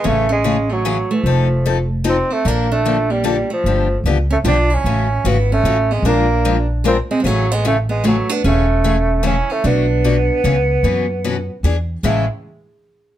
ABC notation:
X:1
M:3/4
L:1/16
Q:"Swing" 1/4=150
K:A
V:1 name="Steel-string acoustic guitar"
C2 C4 A,4 A,2- | A,6 z2 _E2 =C2 | D2 D4 _B,4 A,2- | A,3- A,/2 z2 z/2 C2 =F2 E2- |
E4 E2 C4 B,2 | D6 z2 =F2 =C3/2 _A,/2 | A,2 B,2 C2 B,2 A,2 D2 | C8 E2 C2 |
D8 z4 | z12 | G,2 z8 z2 |]
V:2 name="Steel-string acoustic guitar"
[C,E,A,CG]2 z2 [C,E,A,CG]2 z2 [C,E,A,CG]2 z2 | [=F,=C_EA]2 z2 [F,CEA]2 z2 [F,CEA]2 z2 | [D,=F,_B,DA]2 z2 [D,F,B,DA]2 z2 [D,F,B,DA]2 z2 | [D,=F,B,D=G]2 z2 [D,F,B,DG]2 z2 [D,F,B,DG]2 z2 |
[C,E,A,CF]2 z2 [C,E,A,CF]2 z2 [C,E,A,CF]2 z2 | [=F,_A,D=F_B]2 z2 [F,A,DFB]2 z2 [F,A,DFB]2 z2 | [C,E,A,CG]2 z2 [C,E,A,CG]2 z2 [C,E,A,CG]2 z2 | [C,E,A,CG]2 z2 [C,E,A,CG]2 z2 [C,E,A,CG]2 z2 |
[B,,F,A,DF]2 z2 [B,,F,A,DF]2 z2 [C,E,B,CG]2 z2 | [B,,E,B,CF]2 z2 [B,,E,B,CF]2 z2 [E,B,DG]2 z2 | [A,,C,E,A,CG]2 z8 z2 |]
V:3 name="Bassoon"
A,2 G,4 F,4 =F,2- | =F,6 z2 =C2 A,2 | _B,2 A,4 =G,4 =F,2- | =F,3- F,/2 z2 z/2 A,2 D2 C2- |
C4 B,2 A,4 G,2 | _B,6 z2 =C2 _A,3/2 =F,/2 | F,2 G,2 A,2 G,2 F,2 B,2 | A,8 C2 A,2 |
B,12- | B,8 z4 | E2 z8 z2 |]
V:4 name="Upright bass" clef=bass
A,,,12 | =F,,,12 | _B,,,12 | =G,,,4 C,,4 B,,,4 |
A,,,4 G,,,4 A,,,4 | _B,,,12 | A,,,12 | E,,,12 |
B,,,8 C,,4 | F,,8 E,,4 | A,,,2 z8 z2 |]